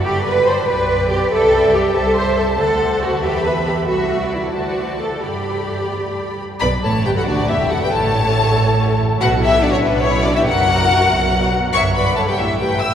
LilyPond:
<<
  \new Staff \with { instrumentName = "Violin section" } { \time 6/8 \key g \major \tempo 4. = 94 b''4. g''4. | g''4. a''4.~ | a''4. b''4. | e''4. a''4. |
b''2~ b''8 r8 | \key d \major b''8 a''8 g''16 fis''16 d''8 e''8 fis''16 g''16 | a''2~ a''8 r8 | fis''8 e''8 d''16 cis''16 b'8 cis''8 d''16 e''16 |
fis''2~ fis''8 r8 | cis'''8 b''8 a''16 g''16 e''8 g''8 e'''8 | }
  \new Staff \with { instrumentName = "Violin section" } { \time 6/8 \key g \major << { d''4. d''4.~ | d''4. e''4. | fis''4. e''4. | e''8. d''8. c''4. |
d''2~ d''8 r8 | \key d \major d''8 cis''8 b'16 a'16 fis'8 g'8 a'16 b'16 | cis''2~ cis''8 r8 | b'8 g'8 fis'16 e'16 d'8 e'8 fis'16 g'16 |
ais'2~ ais'8 r8 | e''8 d''8 cis''16 b'16 g'8 b'8 g''8 | } \\ { b'4. d''4. | e''4. c''4.~ | c''4. b'4. | e''4. d''4. |
d''2~ d''8 r8 | r2. | r2. | r2. |
r2. | r2. | } >> }
  \new Staff \with { instrumentName = "Viola section" } { \time 6/8 \key g \major g'8 b'8 c''8 b'4 g'8 | a'4 g'8 a'8 c''8 a'8 | a'4 fis'8 g'8 b'8 g'8 | fis'4 e'8 fis'4 a'8 |
g'2~ g'8 r8 | \key d \major b'8 a'8 g'16 fis'16 d'8 e'8 fis'16 g'16 | a'2~ a'8 r8 | fis'8 e'8 d'16 cis'16 b8 cis'8 d'16 e'16 |
fis'2~ fis'8 r8 | cis''8 b'8 a'16 g'16 e'8 g'8 e''8 | }
  \new Staff \with { instrumentName = "Cello section" } { \time 6/8 \key g \major g'8 b'8 c''8 b'4 g'8 | a'4 g'8 a'8 c''8 a'8 | a'4 fis'8 g'8 b'8 g'8 | fis'4 e'8 fis'4 a'8 |
g'2~ g'8 r8 | \key d \major b,8 a,8 g,16 fis,16 d,8 e,8 fis,16 g,16 | a,2~ a,8 r8 | b,4. b,4. |
fis,4. b,4. | g,4. a,4. | }
  \new Staff \with { instrumentName = "Double bass section" } { \clef bass \time 6/8 \key g \major g,,4. b,,4. | c,4. c,4. | d,4. e,4. | c,4. d,4. |
g,2~ g,8 r8 | \key d \major b,,8 a,,8 g,,16 r16 d,8 e,,8 fis,,16 r16 | a,,2~ a,,8 r8 | b,,4. b,,4. |
fis,,4. b,,4. | g,,4. a,,4. | }
>>